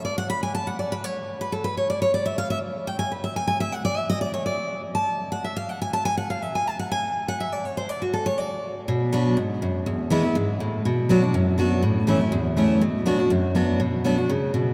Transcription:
\new Staff \with { instrumentName = "Steel-string acoustic guitar" } { \time 4/4 \key b \dorian \tempo 4 = 245 << { d''8 fis''8 b''8 gis''8 a''8 fis''8 d''8 b'8 | cis''4. b'8 a'8 b'8 cis''8 d''8 | cis''8 d''8 e''8 eis''8 e''8 r4 g''8 | gis''8 b'8 e''8 gis''8 gis''8 e''8 fis''8 d''8 |
e''8 dis''8 d''8 cis''8 d''4. r8 | a''4. fis''8 e''8 eis''8 fis''8 gis''8 | a''8 gis''8 fis''8 eis''8 e''8 gis''8 a''8 fis''8 | gis''4. fis''8 e''8 d''8 cis''8 c''8 |
d''8 fis'8 a'8 cis''8 d''4.~ d''16 r16 | r4 <fis b d' fis'>4 r2 | r4 <e gis b e'>8 <b e'>8 r2 | r4 <fis b d' fis'>8 <d' fis'>8 r4 <fis b d' fis'>4 |
r4 <e a cis' e'>8 e'8 r4 <e a cis' e'>4 | r4 <fis b d' fis'>8 <d' fis'>8 r4 <fis b d' fis'>4 | r4 <fis b d' fis'>8 <d' fis'>8 r2 | } \\ { r1 | r1 | r1 | r1 |
r1 | r1 | r1 | r1 |
r1 | b,2 gis,4 fis,4 | e,2 gis,4 a,4 | b,2 fis,2 |
a,2 e,2 | b,2 fis,2 | b,2 cis4 b,4 | } >> }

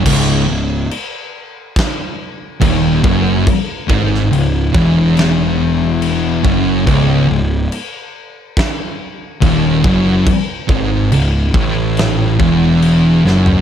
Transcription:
<<
  \new Staff \with { instrumentName = "Distorted electric guitar" } { \clef bass \time 4/4 \key cis \minor \tempo 4 = 70 cis,8 cis,8 r2 dis,8 fis,8 | r8 gis,8 cis,8 e,2 fis,8 | cis,8 cis,8 r2 dis,8 fis,8 | r8 gis,8 cis,8 a,4 e,4 fis,8 | }
  \new Staff \with { instrumentName = "Distorted electric guitar" } { \clef bass \time 4/4 \key cis \minor cis,8 cis,8 r2 dis,8 fis,8 | r8 gis,8 cis,8 e,2 fis,8 | cis,8 cis,8 r2 dis,8 fis,8 | r8 gis,8 cis,8 a,4 e,4 fis,8 | }
  \new Staff \with { instrumentName = "Picked electric bass" } { \clef bass \time 4/4 \key cis \minor cis,,8 cis,,8 r2 dis,,8 fis,,8 | r8 gis,,8 cis,,8 e,,2 fis,,8 | cis,,8 cis,,8 r2 dis,,8 fis,,8 | r8 gis,,8 cis,,8 a,,4 e,,4 fis,,8 | }
  \new DrumStaff \with { instrumentName = "Drums" } \drummode { \time 4/4 <cymc bd>4 cymc4 <cymc bd sn>4 <cymc bd>8 bd8 | <cymc bd>8 bd16 sn16 cymc8 bd8 <cymc sn>4 cymc8 bd8 | <cymc bd>4 cymc4 <cymc bd sn>4 <cymc bd>8 bd8 | <cymc bd>8 bd8 cymc8 bd8 <cymc sn>8 bd8 cymc8 sn16 tomfh16 | }
>>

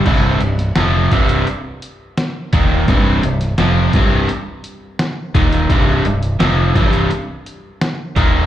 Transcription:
<<
  \new Staff \with { instrumentName = "Overdriven electric guitar" } { \clef bass \time 4/4 \key c \minor \tempo 4 = 85 <c, g, c>8 <c, g,>8 <f, c f>8 <c, g, c>8 r4. <ees, bes, ees>8 | <c, g, c>8 <c, g,>8 <f, c f>8 <c, g, c>8 r4. <ees, bes, ees>8 | <c, g, c>8 <c, g,>8 <f, c f>8 <c, g, c>8 r4. <ees, bes, ees>8 | }
  \new Staff \with { instrumentName = "Fingered electric bass" } { \clef bass \time 4/4 \key c \minor c,,8 c,,8 f,,8 c,,8 r4. ees,,8 | c,,8 c,,8 f,,8 c,,8 r4. ees,,8 | c,,8 c,,8 f,,8 c,,8 r4. ees,,8 | }
  \new DrumStaff \with { instrumentName = "Drums" } \drummode { \time 4/4 <cymc bd>8 hh16 <hh sn>16 <hh sn>8 <hh bd>16 hh16 hh8 hh8 <hh sn>8 <hh bd>8 | <hh bd>8 hh16 <hh sn>16 <hh sn>8 <hh bd>8 hh8 hh8 <hh sn>8 <hh bd>16 hh16 | <hh bd>8 hh16 hh16 <hh sn>8 <hh bd>16 hh16 hh8 hh8 <hh sn>8 <hh bd>8 | }
>>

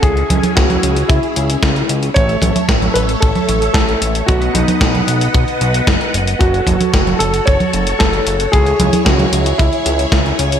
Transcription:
<<
  \new Staff \with { instrumentName = "String machine" } { \time 4/4 \key cis \minor \tempo 4 = 113 << { gis'1 | <a e''>1 | <b fis''>1 | cis''1~ |
cis''1 | } \\ { <cis' e'>1 | <a' cis''>1 | <b' dis''>1 | <fis' a'>1 |
<e' gis'>1 | } >> }
  \new Staff \with { instrumentName = "Grand piano" } { \time 4/4 \key cis \minor gis'4 fis'4 e'4. r8 | cis''4. b'8 a'4 a'4 | fis'8 dis'2. r8 | fis'4. a'8 cis''4 a'4 |
gis'4 fis'4 e'4. r8 | }
  \new Staff \with { instrumentName = "Analog synth bass" } { \clef bass \time 4/4 \key cis \minor cis,8 cis,8 cis,8 cis,8 cis,8 cis,8 cis,8 cis,8 | a,,8 a,,8 a,,8 a,,8 a,,8 a,,8 a,,8 a,,8 | b,,8 b,,8 b,,8 b,,8 b,,8 b,,8 fis,,8 fis,,8 | fis,,8 fis,,8 fis,,8 fis,,8 fis,,8 fis,,8 fis,,8 fis,,8 |
cis,8 cis,8 cis,8 cis,8 cis,8 cis,8 cis,8 cis,8 | }
  \new DrumStaff \with { instrumentName = "Drums" } \drummode { \time 4/4 <hh bd>16 hh16 <cgho hh>16 <cgho hh>16 <hh bd sn>16 <cgho hh>16 hh16 hh16 <hh bd>16 hh16 hh16 hh16 <hh bd sn>16 hh16 hh16 hh16 | <hh bd>16 hh16 <cgho hh bd>16 <cgho hh>16 <hh bd sn>16 <cgho hh>16 hh16 hh16 <hh bd>16 <cgho hh>16 hh16 hh16 <hh bd sn>16 hh16 hh16 hh16 | <hh bd>16 hh16 <cgho hh>16 <cgho hh>16 <hh bd sn>16 <cgho hh>16 hh16 hh16 <hh bd>16 hh16 hh16 hh16 <hh bd sn>16 hh16 hh16 hh16 | <hh bd>16 hh16 <cgho hh bd>16 <cgho hh>16 <hh bd sn>16 <cgho hh>16 hh16 hh16 <hh bd>16 <cgho hh>16 hh16 hh16 <hh bd sn>16 hh16 hh16 hh16 |
<hh bd>16 hh16 <cgho hh>16 <cgho hh>16 <hh bd sn>16 <cgho hh>16 hh16 hh16 <hh bd>16 hh16 hh16 hh16 <hh bd sn>16 hh16 hh16 hh16 | }
>>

